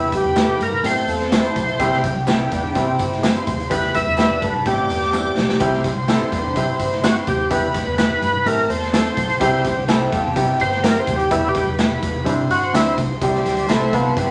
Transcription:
Already playing: E2 G3 B3 E4 G4 B4 B5
0.00 muted conga
0.12 G4, kick, closed hi-hat, tambourine, high conga
0.24 E2, high conga
0.36 G3 B3 E4 A4, snare, clap, closed hi-hat, tambourine
0.48 muted conga, low conga
0.60 G2 A#4, closed hi-hat, tambourine, high conga
0.74 low conga
0.83 A2 A3 B3 C4 E4 G4 A4 C5 A5, closed hi-hat, tambourine, high conga
1.07 E2 C4 A4, closed hi-hat, tambourine
1.20 snare
1.31 A3 C4 E4 G4 C5, snare, clap, closed hi-hat, tambourine, muted conga, high conga
1.44 closed hi-hat
1.56 B1, kick, closed hi-hat, tambourine, high conga, low conga
1.68 closed hi-hat
1.79 C2 G3 C4 E4 G4 G5, kick, closed hi-hat, tambourine
1.92 snare, muted conga
2.03 kick, closed hi-hat, tambourine, high conga
2.15 C2, high conga
2.27 G3 B3 C4 E4 G4, snare, clap, closed hi-hat, tambourine
2.40 muted conga, low conga
2.51 E2 D4 B4, kick, closed hi-hat, tambourine, high conga
2.65 low conga
2.75 C3 G3 C4 E4 G4 C5, kick, closed hi-hat, tambourine, muted conga, high conga
2.89 muted conga
2.99 G1, kick, closed hi-hat, tambourine
3.12 snare
3.22 G3 C4 E4 G4 C5 C6, snare, clap, closed hi-hat, tambourine, high conga
3.35 closed hi-hat, muted conga
3.47 D#2, kick, closed hi-hat, tambourine, high conga, low conga
3.60 closed hi-hat
3.70 E2 G3 B3 E4 G4 B4 B5, kick, closed hi-hat, tambourine, muted conga
3.84 snare
3.94 E5, kick, snare, closed hi-hat, tambourine, high conga
4.07 E2, high conga
4.17 G3 B3 D4 E4 G4 B4, snare, clap, closed hi-hat, tambourine, muted conga
4.30 muted conga, low conga
4.41 G2 A4 B4, kick, closed hi-hat, tambourine, high conga
4.56 low conga
4.65 A1 A3 B3 C4 E4 G4 D5 D6, kick, closed hi-hat, tambourine, high conga
4.78 muted conga
4.89 E2, closed hi-hat, tambourine
5.01 snare
5.13 A3 C4 E4 G4, clap, tambourine, muted conga, high conga
5.25 muted conga
5.36 B1, snare, tambourine, high conga, low conga
5.49 snare
5.60 C2 G3 C4 E4 G4 C5 C6, kick, closed hi-hat
5.73 snare
5.84 kick, snare, closed hi-hat, tambourine, high conga
5.95 C2, high conga
6.08 G3 B3 C4 E4 G4 A4, snare, clap, closed hi-hat, tambourine
6.20 low conga
6.32 E2 D4 B4, kick, closed hi-hat, tambourine, high conga
6.47 low conga
6.55 C3 G3 C4 E4 G4 C5, kick, closed hi-hat, tambourine, muted conga, high conga
6.79 G1, kick, closed hi-hat, tambourine
6.92 snare
7.03 G3 C4 E4 F#4 G4, snare, clap, closed hi-hat, tambourine, muted conga, high conga
7.16 muted conga
7.27 D#2 G4, kick, closed hi-hat, tambourine, high conga, low conga
7.50 E2 G3 B3 E4 G4 B4 B5, kick, closed hi-hat, tambourine
7.74 kick, snare, closed hi-hat, tambourine, high conga
7.86 E2, high conga
7.98 G3 B3 E4 G4 B4, snare, clap, closed hi-hat, tambourine
8.10 low conga
8.22 G2, closed hi-hat, tambourine, high conga
8.36 low conga
8.45 A1 A3 C4 E4 G4 A4 A#4 A5, closed hi-hat, tambourine, high conga
8.69 E2 C5, closed hi-hat, tambourine
8.82 snare
8.93 A3 C4 E4 A4, snare, clap, closed hi-hat, tambourine, muted conga, high conga
9.05 closed hi-hat, muted conga
9.17 B1, kick, closed hi-hat, tambourine, high conga, low conga
9.30 closed hi-hat
9.40 C2 G3 C4 E4 G4 G5, kick, closed hi-hat, tambourine, muted conga
9.54 muted conga
9.65 kick, snare, closed hi-hat, tambourine, high conga
9.76 C2, high conga
9.88 G3 C4 E4 A4 C5, snare, clap, closed hi-hat, tambourine
10.00 muted conga, low conga
10.12 E2 C4 A4, kick, closed hi-hat, tambourine, high conga
10.27 low conga
10.36 C3 G3 B3 C4 E4 G4, kick, closed hi-hat, tambourine, high conga
10.49 muted conga
10.60 G1 C5, kick, closed hi-hat, tambourine
10.71 snare
10.83 G3 C4 E4 G4 A#4, snare, clap, closed hi-hat, tambourine, muted conga, high conga
10.96 C5, closed hi-hat
11.07 D#2, kick, closed hi-hat, tambourine, high conga, low conga
11.16 G4, closed hi-hat
11.31 E1 G3 B3 E4 G4 B4 B5, kick, closed hi-hat, muted conga
11.44 muted conga
11.49 G4
11.55 kick, snare, closed hi-hat, tambourine, high conga
11.66 E1, high conga
11.78 G3 B3 E4 G4, snare, clap, closed hi-hat, tambourine
11.91 muted conga, low conga
12.02 E2, kick, closed hi-hat, tambourine, high conga
12.15 low conga
12.24 C3 G3 C4 D4 E4 C5 C6, kick, closed hi-hat, tambourine, muted conga, high conga
12.50 G1 F#4, closed hi-hat, tambourine
12.73 D2 G3 C4 D4 E4, snare, clap, closed hi-hat, tambourine, muted conga, high conga
12.86 closed hi-hat, muted conga
12.98 C2, kick, closed hi-hat, tambourine, high conga, low conga
13.21 C2 G3 C4 E4 G4 E5 C6, kick, closed hi-hat, tambourine
13.35 snare
13.45 D2, snare, closed hi-hat, tambourine, high conga
13.57 closed hi-hat
13.68 C2 G3 A3 C4 E4 G4 C5, snare, clap, closed hi-hat, tambourine, muted conga
13.80 low conga
13.92 C2 B3 C4 A4, kick, closed hi-hat, high conga
14.07 low conga
14.16 G1 G3 B3 C4 E4 G4, kick, closed hi-hat, tambourine, muted conga, high conga

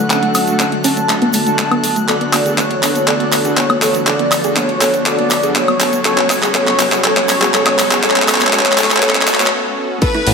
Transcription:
Already playing: D3 F#3 A3 F#4 A4 F#6, riser
0.10 A3 C#4 D4 F#4 A4 F#5, clap, closed hi-hat, shaker
0.23 A3, closed hi-hat
0.34 C#4, open hi-hat, high woodblock, shaker
0.47 A3 D4 F#4 A4, closed hi-hat, shaker
0.60 C#4, clap, closed hi-hat, shaker
0.72 A3, closed hi-hat
0.84 A3 C#4 D4 F#4 A4 A5, open hi-hat, shaker
0.97 A3, closed hi-hat, shaker
1.09 A3 D4 F#4 A4, clap, closed hi-hat, shaker
1.22 B3, closed hi-hat
1.33 A3 A5, open hi-hat, shaker
1.46 A3 D4 F#4 A4, closed hi-hat, shaker
1.58 A3 D4 F#4 A4, clap, closed hi-hat, shaker
1.71 B3, closed hi-hat, high woodblock
1.83 A3, open hi-hat, shaker
1.96 A3, closed hi-hat, shaker
2.08 B3 D4 F#4 A4 D5, clap, closed hi-hat, shaker
2.21 B3, closed hi-hat
2.33 B3, clap, open hi-hat, high woodblock, shaker
2.46 B3 D4 F#4 G#4 A4, closed hi-hat, shaker
2.58 B3 C#5, clap, closed hi-hat, shaker
2.71 B3, closed hi-hat
2.83 B3 D4 F#4 A4, clap, open hi-hat, shaker
2.95 B3, closed hi-hat, shaker
3.07 B3 D4 F#4 A4 D5, clap, closed hi-hat, shaker
3.20 B3, closed hi-hat
3.32 B3, clap, open hi-hat, shaker
3.44 B3 D4 F#4 G#4 A4, closed hi-hat, shaker
3.57 B3 C#5, clap, closed hi-hat, shaker
3.70 B3, closed hi-hat, high woodblock
3.82 B3 D4 F#4 A4, clap, open hi-hat, shaker
3.94 B3, closed hi-hat, shaker
4.07 B3 D4 F#4 A4 D5, clap, closed hi-hat, shaker
4.19 B3, closed hi-hat
4.32 B3, clap, open hi-hat, high woodblock, shaker
4.44 B3 D4 F#4 G#4 A4, closed hi-hat, shaker
4.56 B3 C#5, clap, closed hi-hat, shaker
4.69 B3, closed hi-hat
4.81 B3 D4 F#4 A4, clap, open hi-hat, shaker
4.94 B3, closed hi-hat, shaker
5.06 B3 D4 F#4 A4 D5, clap, closed hi-hat, shaker
5.19 B3, closed hi-hat
5.30 B3, clap, open hi-hat, shaker
5.43 B3 D4 F#4 G#4 A4, closed hi-hat, shaker
5.56 B3 C#5, clap, closed hi-hat, shaker
5.68 B3, closed hi-hat, high woodblock
5.80 B3 D4 F#4 A4, clap, open hi-hat, shaker
5.93 B3, closed hi-hat, shaker
6.05 C#3 F#3 B3 C#4 F#4 A4 C#5, clap, closed hi-hat, shaker
6.18 B3, clap, closed hi-hat
6.30 B3, clap, open hi-hat, high woodblock, shaker
6.42 B3 C#4 F#4 G#4 A4, clap, closed hi-hat, shaker
6.54 B3 C#4 F#4 A4 C#5, clap, closed hi-hat, shaker
6.67 B3, clap, closed hi-hat
6.79 B3, clap, open hi-hat, shaker
6.92 B3 C#4 F#4 G#4 A4, clap, closed hi-hat, shaker
7.04 B3 C#4 F#4 A4 C#5, clap, closed hi-hat, shaker
7.17 B3, clap, closed hi-hat
7.28 B3, clap, open hi-hat, shaker
7.42 B3 C#4 F#4 G#4 A4, clap, shaker
7.54 B3 C#4 F#4 A4 C#5, clap, closed hi-hat, shaker
7.66 B3, clap, closed hi-hat, high woodblock
7.79 B3, clap, open hi-hat, shaker
7.91 B3 C#4 F#4 G#4 A4, clap, closed hi-hat, shaker
8.03 B3 C#4 F#4 A4 C#5, clap, closed hi-hat, shaker
8.10 clap
8.16 B3, clap, closed hi-hat
8.22 clap
8.28 B3 C#4 F#4 A4 C#5, clap, open hi-hat, high woodblock, shaker
8.34 clap
8.40 B3, clap, closed hi-hat, shaker
8.47 clap
8.53 B3 C#4 F#4 A4 C#5, clap, closed hi-hat, shaker
8.59 clap
8.66 B3, clap, closed hi-hat
8.72 clap
8.78 B3 C#4 F#4 A4 C#5, clap, open hi-hat, shaker
8.84 clap
8.90 B3, clap, shaker
8.96 clap
9.02 B3 C#4 F#4 A4 C#5, clap, closed hi-hat, shaker
9.09 clap
9.15 B3, clap, closed hi-hat
9.21 clap
9.27 B3 C#4 F#4 A4 C#5, clap, open hi-hat, shaker
9.34 clap
9.40 B3, clap, closed hi-hat, shaker
9.46 clap
9.52 B3 C#4 F#4 A4
9.77 B3 C#4 F#4 A4
10.01 E3 A3 B3 E4 A4 B4, kick, closed hi-hat, crash
10.14 A3, cross-stick, closed hi-hat, high conga
10.27 A1 A3, closed hi-hat, open hi-hat

